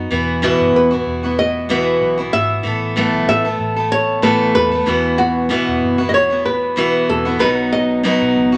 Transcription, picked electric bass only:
0.11 0.51 E1 loud
0.60 0.72 F#1 medium
0.74 1.00 E1 medium
1.06 1.97 E1 loud
2.01 2.27 B1 medium
2.33 2.59 G#1 medium
2.65 3.05 A1 medium
3.14 3.26 B1 medium
3.28 3.54 A1 medium
3.60 4.51 A1 medium
4.55 4.81 E2 medium
4.88 5.54 E1 loud
5.68 5.80 E1 medium
5.83 6.15 F#1 medium
6.15 7.05 E1 loud
7.10 7.35 E1 medium
7.41 8.07 B1 loud
8.22 8.33 B1 medium
8.36 8.57 C#2 medium

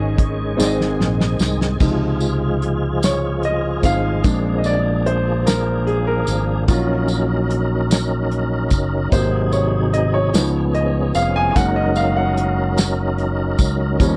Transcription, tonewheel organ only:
0.00 1.77 D#3 medium
0.00 1.79 G#3 medium
0.00 0.55 C#4 medium
0.00 1.78 G#4 medium
0.59 1.80 C4 medium
1.80 6.65 F3 medium
1.80 4.22 G#3 medium
1.80 4.23 F4 medium
1.80 6.64 G#4 medium
4.25 6.67 A#3 medium
4.25 6.67 D4 medium
6.68 10.30 F#3 medium
6.68 9.10 C#4 medium
6.68 10.31 D#4 medium
6.68 9.10 A#4 medium
9.12 10.33 C3 medium
9.12 11.54 G#4 medium
10.33 11.54 F3 medium
10.33 11.55 B3 medium
10.33 14.17 C#4 medium
11.57 13.97 F#3 medium
11.57 14.17 D#4 medium
11.57 14.17 A#4 medium
13.99 14.17 G3 medium

